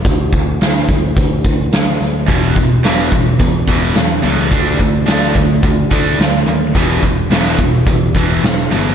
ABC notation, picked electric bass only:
X:1
M:4/4
L:1/8
Q:1/4=107
K:D
V:1 name="Picked electric bass" clef=bass
D,, D,, D,, D,, D,, D,, D,, D,, | E,,, E,,, E,,, E,,, E,, E,,, E,,, C,, | D,, D,, D,, D,, D,, D,, D,, ^D,, | E,,, E,,, E,,, E,,, E,, E,,, E,,, G,,, |]